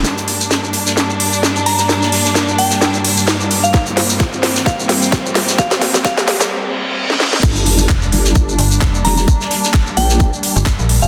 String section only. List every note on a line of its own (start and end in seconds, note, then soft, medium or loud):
0.05 7.39 G2 medium
0.05 7.39 G3 medium
0.05 7.39 A#3 medium
0.05 3.70 D4 medium
3.74 7.39 C4 medium
7.43 11.08 G3 medium
7.43 11.08 A#3 medium
7.43 11.08 D4 medium